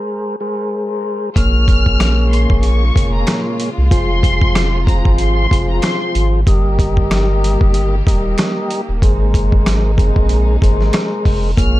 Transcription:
0.00 0.36 G#3 medium
0.00 0.36 G#4 medium
0.00 0.36 A#4 medium
0.00 0.36 C5 medium
0.40 1.30 G#3 medium
0.40 1.30 G#4 medium
0.40 1.30 A#4 medium
0.40 1.30 C5 loud
1.35 2.46 A#1 loud
1.35 2.84 A#2 loud
1.35 3.89 C#3 medium
1.35 6.42 G#3 medium
1.35 3.89 A#3 medium
1.35 2.85 A#3 medium
1.35 6.42 F4 medium
1.35 2.85 G#4 medium
1.35 2.85 C#5 loud
1.35 2.28 F6 loud
1.35 kick loud
1.35 closed hi-hat loud
1.68 kick loud
1.68 closed hi-hat medium
1.86 kick medium
2.00 finger snap medium
2.00 cross-stick medium
2.00 snare loud
2.00 closed hi-hat loud
2.31 2.60 C6 medium
2.31 closed hi-hat medium
2.50 2.91 A#1 medium
2.50 kick loud
2.63 3.11 C#6 medium
2.63 closed hi-hat medium
2.94 3.24 F1 medium
2.94 3.70 A#2 medium
2.94 3.70 A#3 medium
2.94 3.70 G#4 medium
2.94 3.70 C#5 loud
2.94 kick loud
2.94 closed hi-hat medium
3.13 3.26 A#5 medium
3.27 finger snap medium
3.27 cross-stick medium
3.27 snare loud
3.27 closed hi-hat loud
3.60 closed hi-hat medium
3.78 3.90 C2 medium
3.90 5.01 F1 loud
3.90 6.44 C3 medium
3.90 4.80 F3 loud
3.90 6.44 F3 medium
3.90 4.80 F4 medium
3.90 4.80 G#4 medium
3.90 4.81 C5 loud
3.90 4.84 C6 loud
3.90 kick loud
3.90 closed hi-hat loud
4.23 kick loud
4.23 closed hi-hat medium
4.41 kick medium
4.55 finger snap medium
4.55 cross-stick medium
4.55 snare loud
4.55 closed hi-hat loud
4.86 5.46 F3 medium
4.86 5.47 F4 medium
4.86 5.47 G#4 medium
4.86 5.47 C5 loud
4.86 5.15 A#5 medium
4.86 kick loud
4.86 closed hi-hat medium
5.05 5.46 G#1 medium
5.05 kick loud
5.18 5.66 C6 medium
5.18 closed hi-hat medium
5.51 5.80 F1 medium
5.51 6.40 F3 medium
5.51 6.40 F4 medium
5.51 6.41 G#4 medium
5.51 6.41 C5 loud
5.51 kick loud
5.51 closed hi-hat medium
5.70 5.82 A#5 medium
5.82 6.12 C6 medium
5.82 finger snap medium
5.82 cross-stick medium
5.82 snare loud
5.82 closed hi-hat loud
6.15 6.44 G#1 loud
6.15 closed hi-hat medium
6.46 7.57 G1 loud
6.46 8.99 D#3 medium
6.46 8.99 G3 medium
6.46 7.95 G3 medium
6.46 11.53 A#3 medium
6.46 8.99 G4 medium
6.46 7.95 G4 medium
6.46 7.96 A#4 medium
6.46 7.96 D#5 loud
6.46 kick loud
6.46 closed hi-hat loud
6.79 kick medium
6.79 closed hi-hat medium
6.97 kick medium
7.11 finger snap medium
7.11 cross-stick medium
7.11 snare loud
7.11 closed hi-hat loud
7.44 closed hi-hat medium
7.61 8.02 G1 medium
7.61 kick loud
7.74 closed hi-hat medium
8.06 8.35 D#1 loud
8.06 8.81 G3 loud
8.06 8.81 G4 medium
8.06 8.81 A#4 medium
8.06 8.81 D#5 loud
8.06 kick loud
8.06 closed hi-hat medium
8.38 finger snap medium
8.38 cross-stick medium
8.38 snare loud
8.38 closed hi-hat loud
8.71 closed hi-hat medium
8.89 9.01 D#1 medium
9.01 10.12 G#1 loud
9.01 11.54 C3 medium
9.01 11.54 G#3 medium
9.01 9.91 G#3 loud
9.01 11.54 D#4 medium
9.01 9.92 G#4 medium
9.01 9.92 A#4 medium
9.01 9.92 C5 loud
9.01 kick loud
9.01 closed hi-hat loud
9.34 kick loud
9.34 closed hi-hat medium
9.52 kick medium
9.66 finger snap medium
9.66 cross-stick medium
9.66 snare loud
9.66 closed hi-hat loud
9.97 10.57 G#3 medium
9.97 10.57 G#4 medium
9.97 10.57 A#4 medium
9.97 10.57 C5 medium
9.97 kick loud
9.97 closed hi-hat medium
10.16 10.57 A#1 medium
10.16 kick loud
10.29 closed hi-hat medium
10.62 10.91 G#1 loud
10.62 11.51 G#3 loud
10.62 11.51 G#4 medium
10.62 11.51 A#4 medium
10.62 11.51 C5 loud
10.62 kick loud
10.62 closed hi-hat medium
10.81 snare soft
10.93 finger snap medium
10.93 cross-stick medium
10.93 snare loud
10.93 closed hi-hat loud
11.25 11.54 F1 loud
11.25 kick medium
11.25 open hi-hat soft
11.57 11.80 A#1 loud
11.57 11.80 A#2 loud
11.57 11.80 C#3 medium
11.57 11.80 G#3 medium
11.57 11.80 A#3 medium
11.57 11.80 F4 loud
11.57 11.80 G#4 medium
11.57 11.80 C#5 loud
11.57 11.80 F6 loud
11.57 kick loud
11.57 closed hi-hat loud

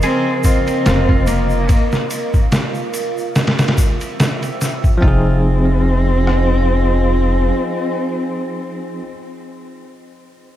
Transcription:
0.00 1.64 C#3 medium
0.00 1.63 F3 medium
0.00 0.42 C4 loud
0.00 0.43 G#4 loud
0.00 1.67 A#4 medium
0.00 3.32 A#4 medium
0.00 1.65 D#5 medium
0.00 ride medium
0.00 shaker soft
0.43 1.28 C4 loud
0.43 0.67 F4 medium
0.43 kick medium
0.43 ride medium
0.43 shaker medium
0.67 ride soft
0.67 shaker soft
0.86 1.66 F1 loud
0.86 1.08 F4 loud
0.86 snare loud
0.86 ride medium
0.86 shaker soft
1.09 1.69 F4 medium
1.09 kick loud
1.26 2.10 A#3 loud
1.26 ride medium
1.26 shaker medium
1.50 shaker soft
1.69 3.34 F4 medium
1.69 3.34 F5 medium
1.69 kick loud
1.69 ride medium
1.69 shaker soft
1.92 snare medium
1.92 shaker soft
2.11 ride medium
2.11 shaker medium
2.34 kick loud
2.34 shaker soft
2.52 snare loud
2.52 ride medium
2.52 shaker medium
2.75 shaker soft
2.94 ride medium
2.94 shaker medium
3.18 shaker soft
3.35 5.01 C5 medium
3.35 5.01 E5 medium
3.35 5.01 G5 medium
3.35 5.01 E6 medium
3.35 snare medium
3.35 ride medium
3.35 shaker medium
3.47 snare medium
3.47 ride medium
3.59 snare loud
3.59 ride medium
3.59 shaker soft
3.68 snare medium
3.68 ride medium
3.78 kick loud
3.78 ride medium
3.78 shaker loud
4.01 ride soft
4.01 shaker soft
4.20 snare loud
4.20 ride medium
4.20 shaker soft
4.43 ride soft
4.43 shaker soft
4.61 snare medium
4.61 ride medium
4.61 shaker medium
4.84 kick loud
4.84 shaker soft
4.97 9.00 F3 medium
4.97 9.03 C4 medium
5.02 7.49 F1 medium
5.02 9.06 C4 loud
5.02 9.06 D#4 medium
5.02 5.41 F4 medium
5.02 9.06 F4 medium
5.02 9.06 C5 medium
5.02 9.06 D#5 medium
5.02 9.05 G#5 medium
5.02 kick loud
5.08 9.10 G#4 loud
6.27 cross-stick medium

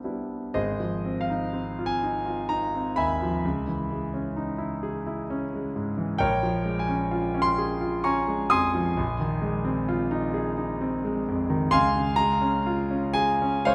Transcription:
0.00 0.04 G3 soft
0.00 0.04 B3 soft
0.00 0.04 D4 soft
0.00 0.51 D4 soft
0.00 0.05 E4 soft
0.04 0.51 G3 soft
0.04 0.52 B3 soft
0.04 0.52 E4 soft
0.54 3.39 G#1 medium
0.54 1.18 G#4 medium
0.54 1.18 C5 medium
0.54 1.22 D#5 medium
0.80 1.20 F3 soft
1.05 1.45 C4 soft
1.21 1.86 F5 medium
1.30 1.69 D#4 soft
1.53 1.92 C4 soft
1.79 2.17 F4 soft
1.86 2.49 G#5 medium
2.03 2.40 D#4 soft
2.26 2.64 F4 soft
2.49 2.87 D#4 soft
2.49 2.96 A#5 medium
2.74 3.11 C4 soft
2.96 3.35 D#2 soft
2.96 5.74 E5 medium
2.96 5.73 G#5 medium
2.96 5.77 B5 medium
3.22 3.45 F3 soft
3.45 6.19 C#2 medium
3.68 4.04 E3 soft
3.90 4.27 G#3 soft
4.14 4.51 C#4 soft
4.36 4.74 D#4 soft
4.58 4.97 E4 medium
4.83 5.21 G#4 soft
5.07 5.45 E4 soft
5.30 5.68 C#4 soft
5.54 5.91 G#3 soft
5.76 6.12 G#2 soft
5.97 6.21 E3 soft
6.18 8.93 A#1 medium
6.18 6.77 A#4 medium
6.18 6.77 C#5 medium
6.18 6.80 G5 medium
6.43 6.80 F3 soft
6.65 7.03 G#3 soft
6.79 7.43 G#5 medium
6.88 7.26 C#4 medium
7.11 7.49 F4 medium
7.34 7.72 C#4 medium
7.42 8.04 C6 loud
7.58 7.96 G#4 medium
7.81 8.19 F4 medium
8.04 8.42 C#4 medium
8.04 8.48 G#5 medium
8.04 8.48 A#5 medium
8.04 8.51 C#6 medium
8.28 8.65 G#3 medium
8.50 8.89 F2 medium
8.50 11.22 G#5 medium
8.50 11.23 C6 medium
8.50 11.26 D#6 loud
8.75 8.98 F3 medium
8.97 11.68 A#1 medium
9.20 9.56 D#3 soft
9.42 9.79 G#3 medium
9.65 10.02 C4 medium
9.89 10.25 F4 medium
10.11 10.48 D#4 medium
10.34 10.71 G#4 medium
10.57 10.94 D#4 medium
10.81 11.18 C4 medium
11.04 11.41 G#3 medium
11.28 11.64 F2 medium
11.50 11.73 D#3 medium
11.71 13.75 C#2 medium
11.71 12.16 F5 medium
11.71 12.16 G#5 medium
11.71 12.18 C6 loud
11.96 12.33 C#3 medium
12.16 12.57 G#3 medium
12.16 13.14 A#5 loud
12.41 12.81 C#4 medium
12.66 13.06 F4 medium
12.91 13.31 C#4 medium
13.14 13.56 G#4 medium
13.14 13.65 G#5 loud
13.42 13.75 C#4 medium
13.65 13.75 G#3 medium
13.65 13.75 C5 medium
13.65 13.75 C#5 medium
13.65 13.75 F5 loud

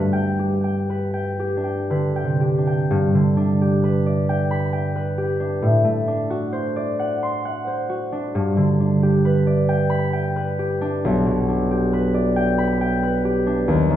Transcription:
0.00 2.90 G2 medium
0.00 1.56 D4 soft
0.00 0.89 B4 soft
0.13 0.63 G5 medium
0.39 1.38 G4 soft
0.64 1.13 G5 soft
0.90 1.89 B4 medium
1.14 1.63 G5 soft
1.39 2.40 G4 soft
1.57 2.57 D4 soft
1.64 2.15 G5 soft
1.90 2.94 D3 soft
1.90 3.82 B4 soft
2.16 2.66 G5 soft
2.24 2.80 C3 soft
2.41 3.60 G4 soft
2.58 3.36 D4 soft
2.67 4.28 G5 soft
2.91 5.66 G2 medium
3.14 5.66 D3 soft
3.37 5.39 D4 soft
3.62 5.17 G4 soft
3.84 4.95 B4 medium
4.06 6.75 D5 soft
4.29 4.72 G5 medium
4.51 5.66 B5 medium
4.73 5.66 G5 medium
4.96 5.66 B4 medium
5.18 5.66 G4 soft
5.40 6.06 D4 medium
5.62 8.38 A2 medium
5.85 8.38 A3 soft
6.08 8.11 D4 soft
6.30 7.88 F#4 medium
6.53 7.66 C5 medium
6.76 9.46 D5 soft
6.99 7.44 F#5 medium
7.23 8.39 C6 medium
7.45 8.39 F#5 medium
7.67 8.38 C5 medium
7.89 8.38 F#4 soft
8.12 8.79 D4 medium
8.35 11.07 G2 medium
8.57 11.07 D3 medium
8.80 10.80 D4 soft
9.03 10.58 G4 soft
9.25 10.35 B4 medium
9.47 12.13 D5 medium
9.69 10.12 G5 medium
9.90 12.57 B5 medium
10.13 12.35 G5 medium
10.36 11.92 B4 medium
10.59 11.70 G4 medium
10.81 11.48 D4 medium
11.05 13.72 B1 medium
11.26 13.72 B2 medium
11.49 13.46 D4 soft
11.71 13.24 G4 medium
11.93 13.02 B4 medium
12.14 13.72 D5 medium
12.36 12.80 G5 medium
12.58 13.96 B5 medium
12.81 13.72 G5 medium
13.03 13.96 B4 medium
13.25 13.72 G4 medium
13.47 13.72 D4 medium
13.68 13.96 D#2 medium
13.90 13.96 D#3 medium

